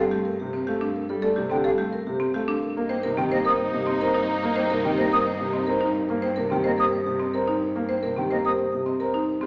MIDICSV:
0, 0, Header, 1, 8, 480
1, 0, Start_track
1, 0, Tempo, 555556
1, 943, Time_signature, 3, 2, 24, 8
1, 8179, End_track
2, 0, Start_track
2, 0, Title_t, "Flute"
2, 0, Program_c, 0, 73
2, 1303, Note_on_c, 0, 79, 69
2, 1355, Note_off_c, 0, 79, 0
2, 1422, Note_on_c, 0, 77, 84
2, 1474, Note_off_c, 0, 77, 0
2, 2745, Note_on_c, 0, 79, 70
2, 2796, Note_off_c, 0, 79, 0
2, 2868, Note_on_c, 0, 75, 79
2, 2919, Note_off_c, 0, 75, 0
2, 2987, Note_on_c, 0, 87, 70
2, 3039, Note_off_c, 0, 87, 0
2, 4188, Note_on_c, 0, 79, 66
2, 4240, Note_off_c, 0, 79, 0
2, 4311, Note_on_c, 0, 75, 87
2, 4362, Note_off_c, 0, 75, 0
2, 4430, Note_on_c, 0, 87, 70
2, 4481, Note_off_c, 0, 87, 0
2, 5627, Note_on_c, 0, 79, 67
2, 5679, Note_off_c, 0, 79, 0
2, 5749, Note_on_c, 0, 75, 75
2, 5801, Note_off_c, 0, 75, 0
2, 5870, Note_on_c, 0, 87, 62
2, 5922, Note_off_c, 0, 87, 0
2, 7066, Note_on_c, 0, 79, 60
2, 7118, Note_off_c, 0, 79, 0
2, 7182, Note_on_c, 0, 75, 73
2, 7234, Note_off_c, 0, 75, 0
2, 7305, Note_on_c, 0, 87, 60
2, 7357, Note_off_c, 0, 87, 0
2, 8179, End_track
3, 0, Start_track
3, 0, Title_t, "Vibraphone"
3, 0, Program_c, 1, 11
3, 0, Note_on_c, 1, 77, 57
3, 139, Note_off_c, 1, 77, 0
3, 217, Note_on_c, 1, 70, 76
3, 342, Note_on_c, 1, 67, 62
3, 377, Note_off_c, 1, 70, 0
3, 466, Note_on_c, 1, 72, 62
3, 499, Note_off_c, 1, 67, 0
3, 589, Note_on_c, 1, 77, 77
3, 620, Note_off_c, 1, 72, 0
3, 704, Note_on_c, 1, 69, 65
3, 741, Note_off_c, 1, 77, 0
3, 828, Note_on_c, 1, 70, 63
3, 859, Note_off_c, 1, 69, 0
3, 944, Note_on_c, 1, 69, 82
3, 981, Note_off_c, 1, 70, 0
3, 1059, Note_on_c, 1, 74, 60
3, 1099, Note_off_c, 1, 69, 0
3, 1181, Note_on_c, 1, 69, 64
3, 1218, Note_off_c, 1, 74, 0
3, 1306, Note_on_c, 1, 67, 78
3, 1338, Note_off_c, 1, 69, 0
3, 1425, Note_on_c, 1, 77, 57
3, 1460, Note_off_c, 1, 67, 0
3, 1580, Note_off_c, 1, 77, 0
3, 1665, Note_on_c, 1, 70, 79
3, 1787, Note_on_c, 1, 67, 66
3, 1820, Note_off_c, 1, 70, 0
3, 1907, Note_on_c, 1, 72, 62
3, 1940, Note_off_c, 1, 67, 0
3, 2031, Note_on_c, 1, 77, 77
3, 2060, Note_off_c, 1, 72, 0
3, 2146, Note_on_c, 1, 69, 59
3, 2182, Note_off_c, 1, 77, 0
3, 2272, Note_on_c, 1, 70, 62
3, 2300, Note_off_c, 1, 69, 0
3, 2387, Note_off_c, 1, 70, 0
3, 2397, Note_on_c, 1, 70, 79
3, 2508, Note_on_c, 1, 79, 67
3, 2544, Note_off_c, 1, 70, 0
3, 2625, Note_on_c, 1, 70, 64
3, 2661, Note_off_c, 1, 79, 0
3, 2746, Note_on_c, 1, 67, 81
3, 2780, Note_off_c, 1, 70, 0
3, 2865, Note_on_c, 1, 82, 55
3, 2900, Note_off_c, 1, 67, 0
3, 3020, Note_off_c, 1, 82, 0
3, 3103, Note_on_c, 1, 72, 79
3, 3226, Note_on_c, 1, 67, 67
3, 3259, Note_off_c, 1, 72, 0
3, 3347, Note_on_c, 1, 75, 64
3, 3380, Note_off_c, 1, 67, 0
3, 3463, Note_on_c, 1, 82, 75
3, 3500, Note_off_c, 1, 75, 0
3, 3587, Note_on_c, 1, 70, 65
3, 3619, Note_off_c, 1, 82, 0
3, 3705, Note_on_c, 1, 72, 65
3, 3741, Note_off_c, 1, 70, 0
3, 3825, Note_on_c, 1, 70, 82
3, 3860, Note_off_c, 1, 72, 0
3, 3951, Note_on_c, 1, 79, 63
3, 3980, Note_off_c, 1, 70, 0
3, 4070, Note_on_c, 1, 70, 66
3, 4102, Note_off_c, 1, 79, 0
3, 4195, Note_on_c, 1, 67, 78
3, 4222, Note_off_c, 1, 70, 0
3, 4312, Note_on_c, 1, 82, 60
3, 4343, Note_off_c, 1, 67, 0
3, 4462, Note_off_c, 1, 82, 0
3, 4550, Note_on_c, 1, 72, 87
3, 4665, Note_on_c, 1, 67, 67
3, 4702, Note_off_c, 1, 72, 0
3, 4785, Note_on_c, 1, 75, 66
3, 4820, Note_off_c, 1, 67, 0
3, 4902, Note_on_c, 1, 82, 74
3, 4940, Note_off_c, 1, 75, 0
3, 5026, Note_on_c, 1, 70, 63
3, 5059, Note_off_c, 1, 82, 0
3, 5143, Note_on_c, 1, 72, 63
3, 5180, Note_off_c, 1, 70, 0
3, 5261, Note_on_c, 1, 70, 78
3, 5299, Note_off_c, 1, 72, 0
3, 5385, Note_on_c, 1, 79, 62
3, 5418, Note_off_c, 1, 70, 0
3, 5508, Note_on_c, 1, 70, 63
3, 5540, Note_off_c, 1, 79, 0
3, 5632, Note_on_c, 1, 67, 75
3, 5661, Note_off_c, 1, 70, 0
3, 5743, Note_on_c, 1, 82, 54
3, 5782, Note_off_c, 1, 67, 0
3, 5862, Note_on_c, 1, 67, 61
3, 5899, Note_off_c, 1, 82, 0
3, 5985, Note_on_c, 1, 72, 76
3, 6019, Note_off_c, 1, 67, 0
3, 6103, Note_on_c, 1, 67, 63
3, 6140, Note_off_c, 1, 72, 0
3, 6225, Note_on_c, 1, 75, 57
3, 6259, Note_off_c, 1, 67, 0
3, 6347, Note_on_c, 1, 82, 70
3, 6380, Note_off_c, 1, 75, 0
3, 6470, Note_on_c, 1, 70, 59
3, 6500, Note_off_c, 1, 82, 0
3, 6587, Note_on_c, 1, 72, 58
3, 6622, Note_off_c, 1, 70, 0
3, 6705, Note_on_c, 1, 70, 75
3, 6740, Note_off_c, 1, 72, 0
3, 6828, Note_on_c, 1, 79, 57
3, 6860, Note_off_c, 1, 70, 0
3, 6949, Note_on_c, 1, 70, 55
3, 6981, Note_off_c, 1, 79, 0
3, 7063, Note_on_c, 1, 67, 71
3, 7101, Note_off_c, 1, 70, 0
3, 7185, Note_on_c, 1, 82, 53
3, 7219, Note_off_c, 1, 67, 0
3, 7302, Note_on_c, 1, 67, 56
3, 7340, Note_off_c, 1, 82, 0
3, 7420, Note_on_c, 1, 72, 77
3, 7458, Note_off_c, 1, 67, 0
3, 7539, Note_on_c, 1, 67, 58
3, 7578, Note_off_c, 1, 72, 0
3, 7660, Note_on_c, 1, 75, 57
3, 7698, Note_off_c, 1, 67, 0
3, 7781, Note_on_c, 1, 82, 62
3, 7818, Note_off_c, 1, 75, 0
3, 7902, Note_on_c, 1, 70, 58
3, 7938, Note_off_c, 1, 82, 0
3, 8032, Note_on_c, 1, 72, 57
3, 8059, Note_off_c, 1, 70, 0
3, 8149, Note_on_c, 1, 69, 81
3, 8179, Note_off_c, 1, 69, 0
3, 8179, Note_off_c, 1, 72, 0
3, 8179, End_track
4, 0, Start_track
4, 0, Title_t, "Marimba"
4, 0, Program_c, 2, 12
4, 0, Note_on_c, 2, 69, 73
4, 98, Note_on_c, 2, 67, 60
4, 137, Note_off_c, 2, 69, 0
4, 257, Note_off_c, 2, 67, 0
4, 459, Note_on_c, 2, 60, 63
4, 579, Note_on_c, 2, 67, 64
4, 618, Note_off_c, 2, 60, 0
4, 701, Note_on_c, 2, 62, 75
4, 738, Note_off_c, 2, 67, 0
4, 858, Note_off_c, 2, 62, 0
4, 1056, Note_on_c, 2, 69, 76
4, 1176, Note_on_c, 2, 67, 63
4, 1217, Note_off_c, 2, 69, 0
4, 1293, Note_on_c, 2, 60, 60
4, 1337, Note_off_c, 2, 67, 0
4, 1418, Note_on_c, 2, 69, 72
4, 1455, Note_off_c, 2, 60, 0
4, 1537, Note_on_c, 2, 67, 64
4, 1577, Note_off_c, 2, 69, 0
4, 1697, Note_off_c, 2, 67, 0
4, 1899, Note_on_c, 2, 60, 69
4, 2024, Note_on_c, 2, 67, 65
4, 2058, Note_off_c, 2, 60, 0
4, 2142, Note_on_c, 2, 62, 82
4, 2179, Note_off_c, 2, 67, 0
4, 2299, Note_off_c, 2, 62, 0
4, 2500, Note_on_c, 2, 72, 75
4, 2621, Note_on_c, 2, 70, 69
4, 2658, Note_off_c, 2, 72, 0
4, 2742, Note_on_c, 2, 60, 69
4, 2778, Note_off_c, 2, 70, 0
4, 2864, Note_on_c, 2, 72, 76
4, 2899, Note_off_c, 2, 60, 0
4, 2979, Note_on_c, 2, 70, 68
4, 3019, Note_off_c, 2, 72, 0
4, 3138, Note_off_c, 2, 70, 0
4, 3340, Note_on_c, 2, 60, 69
4, 3466, Note_on_c, 2, 70, 71
4, 3498, Note_off_c, 2, 60, 0
4, 3582, Note_on_c, 2, 63, 79
4, 3620, Note_off_c, 2, 70, 0
4, 3739, Note_off_c, 2, 63, 0
4, 3938, Note_on_c, 2, 72, 77
4, 4062, Note_on_c, 2, 70, 71
4, 4097, Note_off_c, 2, 72, 0
4, 4176, Note_on_c, 2, 60, 65
4, 4219, Note_off_c, 2, 70, 0
4, 4300, Note_on_c, 2, 72, 78
4, 4337, Note_off_c, 2, 60, 0
4, 4420, Note_on_c, 2, 70, 61
4, 4458, Note_off_c, 2, 72, 0
4, 4578, Note_off_c, 2, 70, 0
4, 4780, Note_on_c, 2, 60, 64
4, 4896, Note_on_c, 2, 70, 65
4, 4938, Note_off_c, 2, 60, 0
4, 5017, Note_on_c, 2, 63, 79
4, 5056, Note_off_c, 2, 70, 0
4, 5177, Note_off_c, 2, 63, 0
4, 5375, Note_on_c, 2, 72, 70
4, 5495, Note_on_c, 2, 70, 60
4, 5536, Note_off_c, 2, 72, 0
4, 5617, Note_on_c, 2, 60, 61
4, 5656, Note_off_c, 2, 70, 0
4, 5736, Note_on_c, 2, 72, 71
4, 5777, Note_off_c, 2, 60, 0
4, 5856, Note_on_c, 2, 70, 57
4, 5897, Note_off_c, 2, 72, 0
4, 6017, Note_off_c, 2, 70, 0
4, 6216, Note_on_c, 2, 60, 62
4, 6339, Note_on_c, 2, 70, 62
4, 6377, Note_off_c, 2, 60, 0
4, 6459, Note_on_c, 2, 63, 71
4, 6498, Note_off_c, 2, 70, 0
4, 6618, Note_off_c, 2, 63, 0
4, 6815, Note_on_c, 2, 72, 70
4, 6936, Note_on_c, 2, 70, 59
4, 6976, Note_off_c, 2, 72, 0
4, 7054, Note_on_c, 2, 60, 53
4, 7097, Note_off_c, 2, 70, 0
4, 7176, Note_on_c, 2, 72, 62
4, 7216, Note_off_c, 2, 60, 0
4, 7298, Note_on_c, 2, 70, 56
4, 7337, Note_off_c, 2, 72, 0
4, 7457, Note_off_c, 2, 70, 0
4, 7654, Note_on_c, 2, 60, 64
4, 7776, Note_on_c, 2, 70, 57
4, 7816, Note_off_c, 2, 60, 0
4, 7898, Note_on_c, 2, 63, 69
4, 7936, Note_off_c, 2, 70, 0
4, 8057, Note_off_c, 2, 63, 0
4, 8132, Note_on_c, 2, 60, 65
4, 8179, Note_off_c, 2, 60, 0
4, 8179, End_track
5, 0, Start_track
5, 0, Title_t, "Soprano saxophone"
5, 0, Program_c, 3, 64
5, 2383, Note_on_c, 3, 63, 70
5, 5108, Note_off_c, 3, 63, 0
5, 8179, End_track
6, 0, Start_track
6, 0, Title_t, "Violin section"
6, 0, Program_c, 4, 48
6, 2380, Note_on_c, 4, 63, 68
6, 2381, Note_on_c, 4, 58, 66
6, 5107, Note_off_c, 4, 58, 0
6, 5107, Note_off_c, 4, 63, 0
6, 8126, Note_on_c, 4, 58, 64
6, 8129, Note_on_c, 4, 65, 64
6, 8179, Note_off_c, 4, 58, 0
6, 8179, Note_off_c, 4, 65, 0
6, 8179, End_track
7, 0, Start_track
7, 0, Title_t, "Grand piano"
7, 0, Program_c, 5, 0
7, 0, Note_on_c, 5, 55, 58
7, 114, Note_on_c, 5, 57, 56
7, 143, Note_off_c, 5, 55, 0
7, 263, Note_off_c, 5, 57, 0
7, 355, Note_on_c, 5, 48, 63
7, 503, Note_off_c, 5, 48, 0
7, 589, Note_on_c, 5, 57, 75
7, 741, Note_off_c, 5, 57, 0
7, 948, Note_on_c, 5, 55, 82
7, 1068, Note_on_c, 5, 57, 66
7, 1101, Note_off_c, 5, 55, 0
7, 1187, Note_on_c, 5, 48, 67
7, 1221, Note_off_c, 5, 57, 0
7, 1305, Note_on_c, 5, 50, 81
7, 1340, Note_off_c, 5, 48, 0
7, 1424, Note_on_c, 5, 55, 65
7, 1460, Note_off_c, 5, 50, 0
7, 1548, Note_on_c, 5, 57, 64
7, 1579, Note_off_c, 5, 55, 0
7, 1701, Note_off_c, 5, 57, 0
7, 1786, Note_on_c, 5, 48, 67
7, 1940, Note_off_c, 5, 48, 0
7, 2033, Note_on_c, 5, 57, 71
7, 2182, Note_off_c, 5, 57, 0
7, 2392, Note_on_c, 5, 58, 75
7, 2511, Note_on_c, 5, 60, 65
7, 2542, Note_off_c, 5, 58, 0
7, 2632, Note_on_c, 5, 48, 67
7, 2662, Note_off_c, 5, 60, 0
7, 2747, Note_on_c, 5, 51, 80
7, 2782, Note_off_c, 5, 48, 0
7, 2874, Note_on_c, 5, 58, 62
7, 2901, Note_off_c, 5, 51, 0
7, 2987, Note_on_c, 5, 60, 63
7, 3023, Note_off_c, 5, 58, 0
7, 3140, Note_off_c, 5, 60, 0
7, 3232, Note_on_c, 5, 48, 67
7, 3382, Note_off_c, 5, 48, 0
7, 3468, Note_on_c, 5, 60, 79
7, 3621, Note_off_c, 5, 60, 0
7, 3832, Note_on_c, 5, 58, 82
7, 3954, Note_on_c, 5, 60, 63
7, 3982, Note_off_c, 5, 58, 0
7, 4068, Note_on_c, 5, 48, 65
7, 4103, Note_off_c, 5, 60, 0
7, 4191, Note_on_c, 5, 51, 77
7, 4221, Note_off_c, 5, 48, 0
7, 4305, Note_on_c, 5, 58, 59
7, 4342, Note_off_c, 5, 51, 0
7, 4427, Note_on_c, 5, 60, 63
7, 4460, Note_off_c, 5, 58, 0
7, 4580, Note_off_c, 5, 60, 0
7, 4671, Note_on_c, 5, 48, 66
7, 4822, Note_off_c, 5, 48, 0
7, 4908, Note_on_c, 5, 60, 77
7, 5061, Note_off_c, 5, 60, 0
7, 5269, Note_on_c, 5, 58, 78
7, 5390, Note_on_c, 5, 60, 64
7, 5421, Note_off_c, 5, 58, 0
7, 5508, Note_on_c, 5, 48, 59
7, 5542, Note_off_c, 5, 60, 0
7, 5628, Note_on_c, 5, 51, 80
7, 5661, Note_off_c, 5, 48, 0
7, 5744, Note_on_c, 5, 58, 62
7, 5781, Note_off_c, 5, 51, 0
7, 5867, Note_on_c, 5, 60, 55
7, 5899, Note_off_c, 5, 58, 0
7, 6020, Note_off_c, 5, 60, 0
7, 6104, Note_on_c, 5, 48, 61
7, 6259, Note_off_c, 5, 48, 0
7, 6344, Note_on_c, 5, 60, 74
7, 6500, Note_off_c, 5, 60, 0
7, 6701, Note_on_c, 5, 58, 70
7, 6822, Note_on_c, 5, 60, 57
7, 6858, Note_off_c, 5, 58, 0
7, 6941, Note_on_c, 5, 48, 56
7, 6979, Note_off_c, 5, 60, 0
7, 7062, Note_on_c, 5, 51, 69
7, 7098, Note_off_c, 5, 48, 0
7, 7189, Note_on_c, 5, 58, 58
7, 7219, Note_off_c, 5, 51, 0
7, 7314, Note_on_c, 5, 60, 54
7, 7341, Note_off_c, 5, 58, 0
7, 7463, Note_off_c, 5, 60, 0
7, 7557, Note_on_c, 5, 48, 57
7, 7704, Note_off_c, 5, 48, 0
7, 7791, Note_on_c, 5, 60, 67
7, 7942, Note_off_c, 5, 60, 0
7, 8145, Note_on_c, 5, 55, 79
7, 8179, Note_off_c, 5, 55, 0
7, 8179, End_track
8, 0, Start_track
8, 0, Title_t, "Cello"
8, 0, Program_c, 6, 42
8, 0, Note_on_c, 6, 43, 60
8, 2253, Note_off_c, 6, 43, 0
8, 2386, Note_on_c, 6, 43, 74
8, 8014, Note_off_c, 6, 43, 0
8, 8143, Note_on_c, 6, 43, 65
8, 8179, Note_off_c, 6, 43, 0
8, 8179, End_track
0, 0, End_of_file